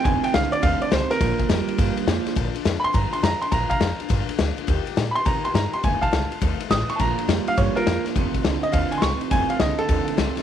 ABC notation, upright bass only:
X:1
M:4/4
L:1/8
Q:"Swing" 1/4=207
K:Bb
V:1 name="Upright bass" clef=bass
F,,, z C,, z E,, z C,, z | B,,, z F,, z G,, z F,, z | B,,, z F,, z G,, z F,, z | B,,, z F,, z G,, z D,, z |
E,, z B,, z C, z G,, z | F,,, z C,, z E,, z A,,, z | B,,, z F,, z G,, z F,, z | F,,, z C,, z E,, z C,, z |
F,,, z C,, z E,, z C,, z |]